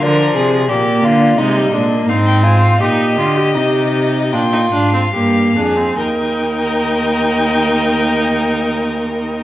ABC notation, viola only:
X:1
M:4/4
L:1/16
Q:1/4=76
K:Eb
V:1 name="Viola"
F,4 B,4 A, G, A, B, C4 | E2 F G4- G D E D C B,2 D C | E16 |]